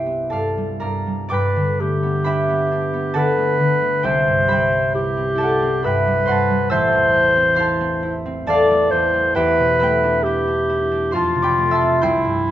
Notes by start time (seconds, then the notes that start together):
Already playing: C2 G2 G3 E4 G4 C5 E5 G5
0.06 B3
0.30 G2 A4 D5 F5 A5
0.57 G3
0.80 G2 A#4 D5 F5 A#5
1.07 G3
1.29 G2 B4 D5 G5 D6
1.34 B5
1.56 D3
1.80 A3 G4
2.03 B3
2.24 D4 B4 E5 G5 B5
2.49 B3
2.71 D4
2.94 B3
3.14 D3 A4 B4 D5 F#5 A5
3.37 A3
3.60 D3
3.81 A3
4.03 C2 G4 C5 E5 G5
4.27 G2
4.48 G3 B4 E5 B5
4.52 G5
4.72 C4
4.94 E4 G4
5.17 C4
5.35 E4 A4 A5
5.40 D5 F#5
5.62 C4
5.83 G2 B4 E5 B5
5.87 G5
6.07 G3
6.25 G2 C5 F#5 C6
6.31 A5
6.50 G3
6.70 A1 C5 E5 A5 C6 E6
6.92 E2
7.14 A3
7.36 C4
7.55 E4 C5 F5 C6
7.60 A5
7.80 C4
8.03 E4
8.26 C4
8.46 E2 A4 D5 F5 A5
8.71 A3
8.91 E2 C5
9.14 A3
9.35 E2 G4 B4 C5 E5 G5
9.59 B2
9.79 A3 B4 E5 G5 B5
10.04 D4
10.23 E4 G4
10.48 D4
10.69 E4
10.91 D4
11.11 F2 F4 C5 F5 C6
11.16 A5
11.36 C3
11.42 D5 G5 B5 D6
11.58 A3
11.71 E5 A5 C6 E6
11.81 C4
12.02 C2 E4 G5 C6 E6 G6
12.25 G2
12.47 G3